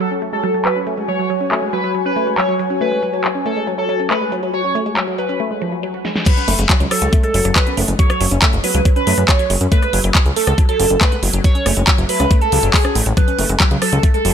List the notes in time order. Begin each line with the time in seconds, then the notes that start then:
Already playing: F#4 C#5 G#5
0.00 F#3 A4, closed hi-hat
0.11 C#4, closed hi-hat
0.22 A3, closed hi-hat
0.33 G#3 A4, closed hi-hat
0.44 F#3, closed hi-hat
0.54 F#3, closed hi-hat
0.65 F#3 B4, clap, closed hi-hat
0.76 C#4, closed hi-hat
0.87 A3, closed hi-hat
0.98 G#3, closed hi-hat
1.08 F#3 C#5, closed hi-hat
1.19 F#3, closed hi-hat
1.30 F#3, closed hi-hat
1.41 C#4, closed hi-hat
1.52 A3, clap, closed hi-hat
1.62 G#3, closed hi-hat
1.73 F#3 B4, closed hi-hat
1.84 F#3, closed hi-hat
1.95 F#3, closed hi-hat
2.05 C#4 B4, closed hi-hat
2.16 A3, closed hi-hat
2.27 G#3, closed hi-hat
2.38 F#3 C#5, clap, closed hi-hat
2.49 F#3, closed hi-hat
2.59 F#3, closed hi-hat
2.70 C#4, closed hi-hat
2.81 A3 B4, closed hi-hat
2.92 G#3, closed hi-hat
3.03 F#3, closed hi-hat
3.13 F#3, closed hi-hat
3.24 F#3, clap, closed hi-hat
3.35 C#4, closed hi-hat
3.46 A3 A4, closed hi-hat
3.57 G#3, closed hi-hat
3.67 F#3, closed hi-hat
3.78 F#3 A4, closed hi-hat
3.89 F#3, closed hi-hat
4.00 C#4, closed hi-hat
4.11 A3 B4, clap, closed hi-hat
4.21 G#3, closed hi-hat
4.32 F#3, closed hi-hat
4.43 F#3, closed hi-hat
4.54 F#3 C#5, closed hi-hat
4.64 C#4, closed hi-hat
4.75 A3, closed hi-hat
4.86 G#3, closed hi-hat
4.97 F#3, clap, closed hi-hat
5.08 F#3, closed hi-hat
5.18 F#3 B4, closed hi-hat
5.29 C#4, closed hi-hat
5.40 A3
5.51 G#3
5.62 F3
5.72 F#3
5.83 F#3
5.94 F#4
6.05 G#3, snare
6.16 G#3, snare
6.26 F#3 B4, kick, cross-stick, closed hi-hat, crash
6.37 C#4, closed hi-hat
6.48 F#1 A3, open hi-hat
6.59 F#1 G#3, closed hi-hat
6.69 F#3, kick, clap, closed hi-hat
6.80 C#2 F#3, closed hi-hat
6.91 F#3 A4, cross-stick, open hi-hat
7.02 C#2 C#4, closed hi-hat
7.13 A3, kick, closed hi-hat
7.23 G#3 A4, closed hi-hat
7.34 F#1 F#3, open hi-hat
7.45 F#1 F#3, cross-stick, closed hi-hat
7.56 F#3 B4, kick, clap, closed hi-hat
7.67 B3 C#4, closed hi-hat
7.77 F#1 A3 B3, open hi-hat
7.88 F#1 G#3, closed hi-hat
7.99 F#3 C#5, kick, closed hi-hat
8.10 F#3, cross-stick, closed hi-hat
8.21 F#1 F#3 C#4, open hi-hat
8.31 F#1 C#4, closed hi-hat
8.42 A3, kick, clap, closed hi-hat
8.53 F#1 G#3, closed hi-hat
8.64 F#3 B3 B4, open hi-hat
8.75 C#2 F#3 B3, closed hi-hat
8.85 F#3, kick, closed hi-hat
8.96 C#4 B4, closed hi-hat
9.07 F#2 A3, open hi-hat
9.18 F#2 G#3 A3, closed hi-hat
9.28 F#3 C#5, kick, cross-stick, clap, closed hi-hat
9.39 F#3, closed hi-hat
9.50 F#1 F#3, open hi-hat
9.61 F#2 C#4, closed hi-hat
9.72 A3 B4, kick, closed hi-hat
9.82 G#3, cross-stick, closed hi-hat
9.93 F#1 F#3, open hi-hat
10.04 F#1 F#3, closed hi-hat
10.15 F#3, kick, clap, closed hi-hat
10.26 C#2 C#4, closed hi-hat
10.36 A3 A4, open hi-hat
10.47 C#2 G#3, cross-stick, closed hi-hat
10.58 F#3, kick, closed hi-hat
10.69 F#3 A4, closed hi-hat
10.80 F#1 F#3, open hi-hat
10.90 F#1 C#4, closed hi-hat
11.01 A3 B4, kick, cross-stick, clap, closed hi-hat
11.12 G#3 B3, closed hi-hat
11.23 F#1 F#3 B3, open hi-hat
11.34 F#1 F#3, closed hi-hat
11.44 F#3 C#5, kick, closed hi-hat
11.55 C#4, closed hi-hat
11.66 F#1 A3 C#4, cross-stick, open hi-hat
11.77 F#1 G#3 C#4, closed hi-hat
11.87 F#3, kick, clap, closed hi-hat
11.98 F#1 F#3 A3, closed hi-hat
12.09 F#3 B4, open hi-hat
12.20 C#2 C#4, cross-stick, closed hi-hat
12.31 A3, kick, closed hi-hat
12.41 G#3 A4, closed hi-hat
12.52 C#2 F#3, open hi-hat
12.63 F#1 F#3, closed hi-hat
12.74 F#3 G#4, kick, clap, open hi-hat
12.85 C#4, cross-stick, closed hi-hat
12.95 A1 A3, open hi-hat
13.06 A1 G#3, closed hi-hat
13.17 F#3 B4, kick, cross-stick, closed hi-hat
13.28 C#4, closed hi-hat
13.39 F#1 A3, open hi-hat
13.49 F#1 G#3, closed hi-hat
13.60 F#3, kick, clap, closed hi-hat
13.71 C#2 F#3, closed hi-hat
13.82 F#3 A4, cross-stick, open hi-hat
13.93 C#2 C#4, closed hi-hat
14.03 A3, kick, closed hi-hat
14.14 G#3 A4, closed hi-hat
14.25 F#1 F#3, open hi-hat